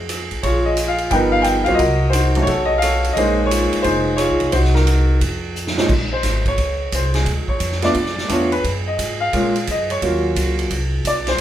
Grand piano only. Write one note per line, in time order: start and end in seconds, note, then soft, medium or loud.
0.43 1.08 F4 medium
0.43 1.08 G#4 medium
0.43 0.67 C#5 medium
0.65 0.89 D#5 medium
0.88 1.12 F5 medium
1.11 1.63 F3 medium
1.11 1.63 G3 medium
1.11 1.63 B3 medium
1.11 1.64 D#4 medium
1.11 1.77 A#4 medium
1.11 1.77 B4 medium
1.11 1.16 G5 loud
1.32 1.44 F5 loud
1.42 1.64 G5 loud
1.64 1.78 F#3 medium
1.64 1.78 A#3 medium
1.64 1.78 C4 medium
1.64 1.78 F4 medium
1.64 1.78 F5 medium
1.74 2.08 D#5 loud
1.79 2.13 F#4 medium
1.79 2.43 A#4 medium
2.10 2.47 C5 medium
2.14 2.35 D#4 medium
2.14 2.46 F#4 medium
2.36 2.47 F#3 medium
2.36 2.47 A3 medium
2.36 2.47 C#4 medium
2.36 2.47 D#4 medium
2.42 2.68 C#5 loud
2.47 3.12 F#4 medium
2.47 2.82 A4 medium
2.65 2.80 D#5 loud
2.78 3.15 F5 loud
2.83 3.14 A4 medium
2.83 3.14 C#5 medium
3.13 3.50 G#4 medium
3.13 3.46 D#5 medium
3.17 4.12 G#3 medium
3.17 4.12 A#3 medium
3.17 4.12 C#4 medium
3.17 3.85 D#4 medium
3.17 3.81 C5 medium
3.46 3.83 C#5 medium
3.51 4.15 F4 medium
3.51 3.85 G#4 medium
3.82 4.15 C5 medium
3.86 4.50 D#4 medium
3.86 4.19 G#4 medium
4.17 4.51 F4 medium
4.17 4.51 G#4 medium
4.17 4.53 C#5 loud
4.52 4.76 D#4 medium
4.52 4.76 F#4 medium
4.52 4.57 C5 medium
4.74 5.19 D#4 medium
4.74 5.19 F#4 medium
4.74 5.18 A#4 medium
5.79 5.89 A#2 medium
5.79 5.89 G#3 medium
5.79 5.89 C4 medium
5.79 5.89 C#4 medium
5.79 5.90 D#4 medium
6.13 6.44 C5 medium
6.48 6.90 C#5 loud
6.95 7.15 C5 medium
7.15 7.26 G#4 medium
7.49 7.81 C#5 medium
7.82 7.94 A3 medium
7.82 7.94 B3 medium
7.82 7.94 D4 medium
7.82 7.94 F4 medium
7.82 8.27 D5 medium
8.28 8.49 A3 medium
8.28 8.49 B3 medium
8.28 8.49 D4 medium
8.28 8.49 F4 medium
8.28 8.52 C#5 medium
8.52 8.64 B4 medium
8.87 9.19 D#5 medium
9.20 9.64 F5 medium
9.33 9.53 G#3 medium
9.33 9.53 A#3 medium
9.33 9.53 C#4 medium
9.33 9.53 F4 medium
9.71 9.90 D#5 medium
9.91 9.98 C#5 medium
10.03 10.71 F#3 medium
10.03 10.70 A#3 medium
10.03 10.71 C#4 medium
10.03 10.71 F4 medium
11.07 11.27 D5 medium
11.28 11.39 C5 medium